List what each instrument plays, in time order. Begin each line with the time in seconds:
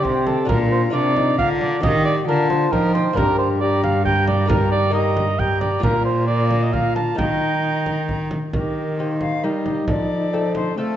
Already playing: lute C4 G4 D#5, trombone G4, recorder G5
0.03 lute C3, cello C3, cor anglais C5, frame drum
0.26 cor anglais A4, frame drum
0.45 lute A#2 D4 F4 A#4, trombone F4, cor anglais A#4, frame drum
0.49 cello A#2, recorder A#5
0.71 cor anglais C5
0.90 lute C3 D4 F4 A#4, cello C3, trombone D4, cor anglais D5
1.16 trombone D#4, frame drum
1.38 cello D3, lute D3, trombone F4, cor anglais F5, frame drum
1.61 cor anglais D5, frame drum
1.80 cello D#3, lute D#3 A#3 G4 D#5, trombone G4, cor anglais D#5, frame drum
2.05 cor anglais D5
2.27 cello D3, lute D3, trombone F4, cor anglais A#4, recorder A5
2.50 cor anglais C5, frame drum
2.72 cello F3, lute F3, trombone D#4, cor anglais A#4, recorder G5, frame drum
2.95 cor anglais C5, frame drum
3.13 cello G2, lute A#3 D4 A#4, trombone G4, cor anglais A#4, recorder A#5, frame drum
3.17 lute G2
3.38 cor anglais C5
3.60 trombone G4, cor anglais D5, recorder A#5
3.84 cor anglais F5, frame drum
4.05 trombone G4, cor anglais G5, recorder A#5, frame drum
4.27 cor anglais D5, frame drum
4.46 lute A#3 D#4 A#4, cor anglais A#4, frame drum
4.50 trombone G4, recorder A#5
4.72 cor anglais D5
4.90 lute A#3 D#4 A#4, cor anglais D#5
4.94 trombone G4, recorder A#5
5.17 frame drum
5.39 trombone G4, cor anglais G5, recorder A#5, frame drum
5.61 cor anglais D5, frame drum
5.79 lute A#2 A#3 F4 A#4, cello A#2
5.83 trombone F4, cor anglais A#4, recorder A#5, frame drum
6.05 cor anglais C5
6.27 trombone F4, cor anglais D5, recorder A#5
6.51 frame drum
6.63 cor anglais D#5
6.73 trombone F4, cor anglais F5, recorder A#5, frame drum
6.95 cor anglais A5, frame drum
7.15 cello D#3, lute D#3 A#3 D#4 A#4, trombone D#4, cor anglais G5, recorder A#5, frame drum
7.86 frame drum
8.09 frame drum
8.31 frame drum
8.53 lute D#3, cello D#3, trombone D#4, cor anglais G4, recorder A#4, frame drum
8.99 lute A#3 D#4 G4, cor anglais C5
9.20 recorder F5, frame drum
9.43 cello G3, lute G3 A#3 D#4 G4, cor anglais A#4, recorder D#5
9.66 cor anglais G4, frame drum
9.88 cello F3, lute F3, cor anglais A4, recorder D5, frame drum
10.33 lute A3 C4 A4
10.55 recorder C5, frame drum
10.77 cello A3, lute A3 C4 A4, trombone C4, cor anglais F4, recorder A4